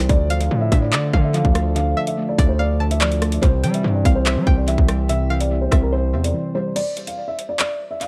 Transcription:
0.00 0.12 C3 medium
0.00 0.12 E3 medium
0.00 0.12 G3 medium
0.00 0.11 C4 loud
0.00 0.11 C5 medium
0.09 0.49 D2 loud
0.09 1.12 D3 medium
0.09 3.39 F3 medium
0.09 3.39 D4 medium
0.09 3.39 A4 medium
0.09 0.39 D5 loud
0.09 kick loud
0.09 closed hi-hat medium
0.30 1.33 F3 medium
0.30 0.69 F5 loud
0.30 closed hi-hat medium
0.41 0.57 F5 medium
0.41 closed hi-hat medium
0.51 0.71 A2 loud
0.51 1.54 A3 medium
0.61 0.77 E5 medium
0.72 0.94 A2 loud
0.72 1.76 D4 loud
0.72 0.92 E5 medium
0.72 kick loud
0.72 closed hi-hat medium
0.82 0.90 D5 medium
0.92 1.12 D3 loud
0.92 1.22 D5 medium
0.92 1.97 D5 medium
0.92 1.13 D5 medium
0.92 clap loud
0.92 closed hi-hat medium
1.13 1.75 D3 medium
1.13 1.44 D3 loud
1.13 1.33 F5 medium
1.13 kick loud
1.24 1.32 E5 medium
1.34 1.95 F3 loud
1.34 1.74 F5 medium
1.34 closed hi-hat medium
1.45 1.95 D2 loud
1.45 kick medium
1.55 2.16 A3 medium
1.55 cross-stick loud
1.55 closed hi-hat medium
1.76 2.79 D3 medium
1.76 2.05 F5 loud
1.76 closed hi-hat medium
1.97 3.01 F3 medium
1.97 2.36 E5 medium
2.07 2.23 E5 medium
2.07 closed hi-hat medium
2.18 3.21 A3 medium
2.29 2.44 D5 medium
2.38 3.39 D2 loud
2.38 3.43 D4 loud
2.38 2.58 D5 medium
2.38 kick loud
2.38 closed hi-hat medium
2.49 2.57 C5 medium
2.59 3.43 D5 medium
2.59 2.89 D5 medium
2.59 2.79 F5 medium
2.80 3.43 D3 medium
2.80 3.00 A5 medium
2.91 2.99 E5 medium
2.91 closed hi-hat medium
3.01 3.43 F3 loud
3.01 3.40 D5 loud
3.01 clap loud
3.12 closed hi-hat medium
3.22 3.43 A3 medium
3.22 cross-stick loud
3.22 closed hi-hat medium
3.32 closed hi-hat medium
3.42 3.65 C2 loud
3.42 4.46 C3 medium
3.42 6.73 E3 medium
3.42 6.73 C4 medium
3.42 6.73 G4 medium
3.42 3.72 C5 loud
3.42 kick loud
3.42 closed hi-hat medium
3.63 4.67 E3 medium
3.63 3.83 G3 loud
3.63 4.03 G5 medium
3.63 closed hi-hat medium
3.74 3.90 E5 medium
3.74 closed hi-hat medium
3.84 4.04 G2 loud
3.84 4.87 G3 medium
3.95 4.10 D5 medium
4.05 4.38 C2 loud
4.05 5.09 C4 loud
4.05 4.25 F5 medium
4.05 kick loud
4.05 closed hi-hat medium
4.15 4.23 C5 medium
4.26 4.55 C5 medium
4.26 5.30 C5 medium
4.26 4.46 E5 medium
4.26 clap loud
4.26 closed hi-hat medium
4.36 4.46 G3 loud
4.47 4.77 C2 loud
4.47 5.08 C3 medium
4.47 4.67 G5 medium
4.47 kick loud
4.57 4.65 D5 medium
4.67 5.29 E3 medium
4.67 5.07 E5 medium
4.67 closed hi-hat medium
4.78 5.68 C2 loud
4.78 kick medium
4.88 5.50 G3 medium
4.88 cross-stick loud
4.88 closed hi-hat medium
5.09 6.13 C3 medium
5.09 5.39 E5 loud
5.09 closed hi-hat medium
5.30 6.33 E3 medium
5.30 5.69 F5 medium
5.40 5.56 D5 medium
5.40 closed hi-hat medium
5.51 6.54 G3 medium
5.61 5.77 C5 medium
5.71 6.15 C2 loud
5.71 6.76 C4 medium
5.71 6.30 E5 medium
5.71 kick loud
5.71 cross-stick loud
5.71 closed hi-hat medium
5.82 5.90 A#4 medium
5.93 6.22 C5 medium
5.93 6.76 C5 medium
6.14 6.33 E2 loud
6.14 6.76 C3 medium
6.24 6.53 D5 medium
6.24 closed hi-hat medium
6.34 6.76 E3 medium
6.55 6.76 G3 medium
6.55 6.71 C5 medium
6.76 7.05 D5 loud
6.76 closed hi-hat medium
6.76 crash loud
6.97 closed hi-hat medium
7.07 7.23 F5 medium
7.07 closed hi-hat medium
7.28 7.44 E5 medium
7.39 closed hi-hat medium
7.49 7.57 D5 medium
7.59 7.89 D5 medium
7.59 clap loud
7.59 closed hi-hat medium
7.91 7.99 E5 medium
8.01 8.08 F5 medium
8.01 closed hi-hat medium

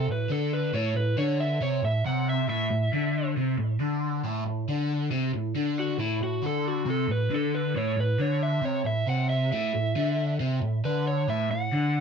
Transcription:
0.08 0.26 A2 medium
0.08 0.31 B4 medium
0.29 0.73 D3 medium
0.29 0.52 A4 medium
0.53 0.74 B4 medium
0.73 0.95 A2 loud
0.73 0.96 C#5 medium
0.96 1.13 A2 medium
0.96 1.17 B4 loud
1.17 1.60 D3 loud
1.17 1.39 C#5 medium
1.40 1.61 E5 medium
1.61 1.82 C3 loud
1.61 1.83 C#5 medium
1.83 2.00 A2 medium
1.83 2.05 E5 medium
2.06 2.48 C3 medium
2.06 2.27 F#5 medium
2.29 2.48 E5 medium
2.48 2.69 A2 loud
2.48 3.30 E5 loud
2.70 2.88 A2 medium
2.93 3.36 D3 loud
3.37 3.57 C3 medium
3.58 3.76 A2 medium
3.80 4.23 D3 medium
4.24 4.45 A2 loud
4.46 4.63 A2 medium
4.68 5.11 D3 loud
5.11 5.33 C3 loud
5.34 5.51 A2 medium
5.55 5.99 D3 loud
5.79 6.00 F#4 medium
5.99 6.20 A2 medium
5.99 6.21 E4 medium
6.21 6.39 A2 medium
6.21 6.44 F#4 medium
6.42 6.85 D3 medium
6.42 6.66 A4 medium
6.68 6.88 F#4 medium
6.85 7.08 C3 loud
6.90 7.10 A4 medium
7.08 7.26 A2 medium
7.08 7.32 B4 loud
7.30 7.74 D3 loud
7.35 7.55 A4 medium
7.55 7.75 B4 loud
7.75 7.95 A2 loud
7.75 7.98 C#5 loud
7.97 8.15 A2 medium
7.97 8.20 B4 medium
8.18 8.62 D3 loud
8.18 8.42 C#5 medium
8.43 8.63 E5 medium
8.62 8.84 C3 loud
8.62 8.86 C#5 medium
8.85 9.03 A2 medium
8.85 9.07 E5 medium
9.07 9.51 C3 medium
9.07 9.29 F#5 medium
9.29 9.51 E5 medium
9.52 9.73 A2 loud
9.52 10.33 E5 medium
9.75 9.92 A2 medium
9.96 10.39 D3 loud
10.40 10.61 C3 loud
10.62 10.79 A2 medium
10.84 11.28 D3 loud
10.84 11.06 B4 medium
11.08 11.28 C#5 medium
11.28 11.50 A2 loud
11.28 11.50 E5 loud
11.51 11.68 A2 medium
11.51 12.00 F#5 loud
11.72 12.00 D3 loud

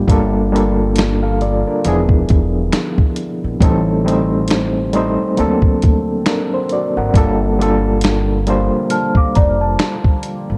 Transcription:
0.00 0.10 D4 medium
0.07 1.62 G1 loud
0.07 3.57 D3 medium
0.07 0.42 G3 medium
0.07 1.83 G3 medium
0.07 1.83 A#3 medium
0.07 0.43 A#3 medium
0.07 0.43 D4 medium
0.07 1.83 F4 medium
0.07 0.44 F4 medium
0.07 1.83 A4 medium
0.07 0.44 A4 loud
0.07 kick loud
0.07 closed hi-hat medium
0.52 1.21 G3 medium
0.52 1.21 A#3 medium
0.52 0.97 D4 medium
0.52 0.98 F4 medium
0.52 0.98 A4 medium
0.52 closed hi-hat medium
0.96 finger snap medium
0.96 snare loud
0.96 closed hi-hat medium
1.23 1.40 A4 medium
1.23 1.40 F5 medium
1.41 1.66 F4 medium
1.41 1.66 D5 medium
1.41 closed hi-hat soft
1.67 1.85 D4 medium
1.67 2.09 A#4 medium
1.85 2.24 E1 loud
1.85 3.27 F3 medium
1.85 3.60 F3 medium
1.85 3.60 G#3 medium
1.85 3.28 B3 medium
1.85 3.60 B3 medium
1.85 3.28 D4 medium
1.85 3.60 E4 medium
1.85 3.28 E4 medium
1.85 3.29 G#4 loud
1.85 closed hi-hat medium
2.09 kick medium
2.29 2.69 E1 medium
2.29 kick loud
2.29 closed hi-hat medium
2.73 finger snap medium
2.73 snare loud
2.73 closed hi-hat medium
2.98 kick medium
3.16 closed hi-hat medium
3.44 3.60 A#1 medium
3.60 5.15 A1 loud
3.60 5.36 D#3 medium
3.60 3.95 G3 medium
3.60 5.36 G3 medium
3.60 3.96 A3 medium
3.60 7.10 C4 medium
3.60 3.96 C4 medium
3.60 3.96 D#4 medium
3.60 5.36 G4 medium
3.60 7.11 A4 medium
3.60 3.97 A4 medium
3.60 kick loud
3.60 closed hi-hat medium
4.05 4.74 G3 medium
4.05 4.74 A3 medium
4.05 4.74 C4 medium
4.05 4.75 D#4 medium
4.05 4.75 C5 medium
4.05 closed hi-hat medium
4.48 finger snap medium
4.48 snare loud
4.48 closed hi-hat medium
4.93 5.37 G3 medium
4.93 5.38 A3 medium
4.93 5.37 C4 medium
4.93 5.39 D#4 medium
4.93 5.39 C5 medium
4.93 closed hi-hat medium
5.37 5.77 D2 medium
5.37 7.13 D3 medium
5.37 5.45 F3 medium
5.37 6.80 A#3 medium
5.37 10.58 A#3 medium
5.37 6.81 C4 medium
5.37 6.27 D4 medium
5.37 7.13 F#4 medium
5.37 6.27 A4 loud
5.37 closed hi-hat medium
5.44 6.83 F#3 medium
5.62 kick medium
5.82 6.22 D2 loud
5.82 kick loud
5.82 closed hi-hat medium
6.26 6.51 D4 medium
6.26 6.51 A#4 medium
6.26 finger snap medium
6.26 snare loud
6.26 closed hi-hat medium
6.54 6.70 C5 medium
6.69 6.96 F#4 medium
6.69 6.96 D5 medium
6.69 closed hi-hat medium
6.97 7.12 G#1 medium
6.97 7.39 A#4 medium
6.97 7.38 F#5 medium
7.13 8.68 G1 loud
7.13 10.58 D3 medium
7.13 10.58 F3 medium
7.13 10.58 G3 medium
7.13 7.49 G3 medium
7.13 7.49 A#3 medium
7.13 7.49 D4 medium
7.13 10.58 F4 medium
7.13 7.50 F4 medium
7.13 7.50 A4 loud
7.13 kick loud
7.13 closed hi-hat medium
7.59 8.27 G3 medium
7.59 8.28 A#3 medium
7.59 8.28 D4 medium
7.59 8.28 F4 medium
7.59 8.29 A4 medium
7.59 closed hi-hat medium
8.01 finger snap medium
8.01 snare loud
8.01 closed hi-hat medium
8.47 9.77 G3 medium
8.47 9.78 A#3 medium
8.47 9.78 D4 medium
8.47 9.78 F4 medium
8.47 9.79 C5 medium
8.47 closed hi-hat medium
8.90 9.15 A5 medium
8.90 9.15 F6 medium
8.90 closed hi-hat medium
9.15 9.35 F5 medium
9.15 9.34 D6 medium
9.15 kick medium
9.35 9.75 F1 loud
9.35 9.60 D5 medium
9.35 9.59 A#5 medium
9.35 kick loud
9.35 closed hi-hat medium
9.61 10.58 A5 medium
9.79 finger snap medium
9.79 snare loud
9.79 closed hi-hat medium
10.04 kick medium
10.23 closed hi-hat medium
10.50 10.58 G#1 medium

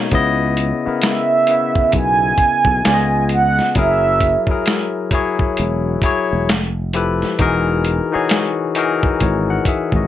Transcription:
0.00 0.14 B2 medium
0.00 0.14 A#3 medium
0.00 0.14 C#4 medium
0.00 0.14 D#4 medium
0.00 0.14 C#5 medium
0.11 0.71 C#2 medium
0.11 0.66 C#3 loud
0.11 0.67 B3 medium
0.11 0.67 E4 medium
0.11 0.68 D#5 loud
0.11 kick medium
0.11 closed hi-hat medium
0.57 closed hi-hat medium
0.85 1.36 C#3 medium
0.85 1.37 B3 medium
0.85 1.37 E4 medium
0.85 1.38 A#4 medium
0.85 muted fretless electric bass stroke soft
1.02 snare loud
1.02 closed hi-hat medium
1.07 1.92 E5 loud
1.47 2.83 C#3 medium
1.47 2.84 B3 medium
1.47 2.86 E4 medium
1.47 closed hi-hat medium
1.51 2.86 E5 medium
1.75 kick medium
1.92 2.31 B1 loud
1.92 kick medium
1.92 closed hi-hat medium
1.97 3.28 G#5 loud
2.38 kick medium
2.38 closed hi-hat medium
2.65 2.81 B1 medium
2.65 kick medium
2.85 3.59 C#2 medium
2.85 3.61 C#3 medium
2.85 3.62 B3 medium
2.85 3.62 F4 medium
2.85 2.94 D5 medium
2.85 snare loud
2.85 closed hi-hat medium
2.94 3.66 D#5 medium
3.29 closed hi-hat medium
3.33 3.74 F#5 loud
3.59 snare soft
3.75 4.35 F#1 loud
3.75 4.30 F#3 medium
3.75 4.31 E4 medium
3.75 4.31 G#4 medium
3.75 4.32 A#4 loud
3.75 kick medium
3.75 closed hi-hat medium
3.79 4.64 E5 medium
4.21 kick medium
4.21 closed hi-hat medium
4.47 5.00 F#3 medium
4.47 5.00 E4 medium
4.47 5.01 G#4 medium
4.47 muted fretless electric bass stroke soft
4.47 kick medium
4.51 5.01 A#4 medium
4.66 snare loud
4.66 closed hi-hat medium
5.11 5.87 F#3 medium
5.11 5.87 E4 medium
5.11 5.88 G#4 medium
5.11 5.88 C#5 medium
5.11 kick medium
5.11 closed hi-hat medium
5.39 kick medium
5.57 5.95 E1 medium
5.57 closed hi-hat medium
6.02 6.48 F#3 medium
6.02 6.49 E4 medium
6.02 6.49 G#4 medium
6.02 6.50 C#5 loud
6.02 kick medium
6.02 closed hi-hat medium
6.33 6.50 E1 medium
6.49 7.22 F1 medium
6.49 snare loud
6.49 closed hi-hat medium
6.93 7.31 F3 medium
6.93 7.31 E4 medium
6.93 7.32 G4 medium
6.93 7.32 A4 medium
6.93 7.33 B4 medium
6.93 closed hi-hat medium
7.22 snare soft
7.39 7.99 E1 loud
7.39 7.94 E3 loud
7.39 7.94 D#4 loud
7.39 7.94 F#4 medium
7.39 7.95 G#4 loud
7.39 7.95 A#4 loud
7.39 kick medium
7.39 closed hi-hat medium
7.85 closed hi-hat medium
8.12 8.63 E3 medium
8.12 8.64 D#4 medium
8.12 8.64 F#4 medium
8.12 8.64 G#4 medium
8.12 8.65 C#5 medium
8.12 muted fretless electric bass stroke soft
8.29 snare loud
8.29 closed hi-hat medium
8.75 10.07 E3 medium
8.75 9.21 D#4 medium
8.75 9.22 F#4 medium
8.75 9.22 G#4 medium
8.75 9.22 A#4 loud
8.75 closed hi-hat medium
9.03 kick medium
9.20 9.58 G#1 loud
9.20 9.48 E4 medium
9.20 9.48 C#5 medium
9.20 kick medium
9.20 closed hi-hat medium
9.50 9.67 A#4 medium
9.50 9.66 F#5 medium
9.65 9.94 G#4 medium
9.65 9.94 E5 medium
9.65 kick medium
9.65 closed hi-hat medium
9.92 10.07 G#1 medium
9.92 10.07 D#5 medium
9.92 kick medium
9.97 10.07 F#4 soft

